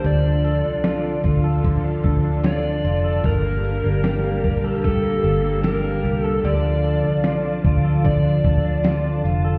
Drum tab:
HH |xxxxxxxx|xxxxxxxx|xxxxxxxx|
SD |--o---o-|--o---o-|--o---o-|
BD |---ooo--|o--oo---|---ooo--|